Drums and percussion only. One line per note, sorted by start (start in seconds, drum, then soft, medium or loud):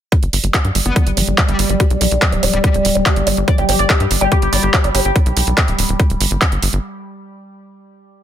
0.12 kick loud
0.12 closed hi-hat medium
0.23 closed hi-hat soft
0.33 open hi-hat loud
0.44 closed hi-hat soft
0.54 kick loud
0.54 clap loud
0.54 closed hi-hat medium
0.65 closed hi-hat soft
0.75 open hi-hat loud
0.86 closed hi-hat soft
0.96 kick loud
0.96 closed hi-hat medium
1.07 closed hi-hat soft
1.17 open hi-hat loud
1.28 closed hi-hat soft
1.38 kick loud
1.38 clap loud
1.38 closed hi-hat medium
1.49 closed hi-hat soft
1.59 open hi-hat loud
1.69 closed hi-hat soft
1.80 kick loud
1.80 closed hi-hat medium
1.90 closed hi-hat soft
2.01 open hi-hat loud
2.11 closed hi-hat soft
2.22 kick loud
2.22 clap loud
2.22 closed hi-hat medium
2.32 closed hi-hat soft
2.43 open hi-hat loud
2.53 closed hi-hat soft
2.64 kick loud
2.64 closed hi-hat medium
2.74 closed hi-hat soft
2.85 open hi-hat loud
2.95 closed hi-hat soft
3.06 kick loud
3.06 clap loud
3.06 closed hi-hat medium
3.16 closed hi-hat soft
3.27 open hi-hat loud
3.37 closed hi-hat soft
3.48 kick loud
3.48 closed hi-hat medium
3.58 closed hi-hat soft
3.69 open hi-hat loud
3.79 closed hi-hat soft
3.90 kick loud
3.90 clap loud
3.90 closed hi-hat medium
4.00 closed hi-hat soft
4.11 open hi-hat loud
4.21 closed hi-hat soft
4.32 kick loud
4.32 closed hi-hat medium
4.42 closed hi-hat soft
4.53 open hi-hat loud
4.63 closed hi-hat soft
4.74 kick loud
4.74 clap loud
4.74 closed hi-hat medium
4.84 closed hi-hat soft
4.95 open hi-hat loud
5.16 kick loud
5.16 closed hi-hat medium
5.26 closed hi-hat soft
5.37 open hi-hat loud
5.47 closed hi-hat soft
5.58 kick loud
5.58 clap loud
5.58 closed hi-hat medium
5.68 closed hi-hat soft
5.79 open hi-hat loud
5.89 closed hi-hat soft
6.00 kick loud
6.00 closed hi-hat medium
6.10 closed hi-hat soft
6.21 open hi-hat loud
6.31 closed hi-hat soft
6.42 kick loud
6.42 clap loud
6.42 closed hi-hat medium
6.52 closed hi-hat soft
6.62 open hi-hat loud
6.73 closed hi-hat soft